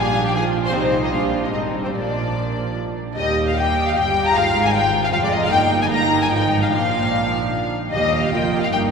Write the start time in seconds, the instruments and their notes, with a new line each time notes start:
Already playing: double bass section A#1, cello section A#2, viola section G3 D4, violin section G#4 G#5
0.26 violin section G4 G5
0.35 viola section F3 F4, violin section G#4 G#5
0.65 violin section C5 C6
0.74 double bass section C2, cello section C3, viola section G3 D#4, violin section C4 C5
1.02 violin section D#4 D#5
1.12 double bass section A#1, cello section A#2, viola section D4, violin section F4 F5
1.42 violin section D#4 D#5
1.52 double bass section G#1, cello section G#2, viola section G#3 C4, violin section D#4 D#5
1.74 viola section G3
1.83 violin section C4 C5
1.93 double bass section A#1, cello section A#2, viola section F3 A#3, violin section D4 D5
3.15 double bass section D#2, cello section D#2, viola section G3 G4, violin section D#5
3.47 violin section F5
3.56 viola section G3 G4, violin section G5
3.87 violin section F5
3.96 double bass section G1, cello section G2, viola section G3 G4, violin section G5
4.25 violin section A#5
4.36 double bass section G#1, cello section G#2, viola section G#3 F4, violin section F5
4.64 violin section G#5
4.74 violin section G5
5.04 violin section F5
5.12 double bass section F1, cello section F2, viola section G#3 F4, violin section F5
5.24 violin section D5
5.32 violin section D#5
5.43 violin section F5
5.51 double bass section G1, cello section G2, viola section A#3 D#4, violin section G5
5.82 violin section G#5
5.90 viola section A#3 D#4, violin section A#5
6.21 violin section G#5
6.30 double bass section G#1, cello section G#2, viola section F3 D#4, violin section G5
6.62 violin section F5
6.70 double bass section A#1, cello section A#2, viola section F3 D4, violin section F5
7.91 cello section D#2, double bass section D#2, viola section G3 G4, violin section D#5
8.22 violin section F5
8.32 double bass section F1, cello section F2, viola section A#3 F4, violin section G5
8.62 violin section F5
8.72 double bass section G1, cello section G2, viola section A#3 D#4, violin section G5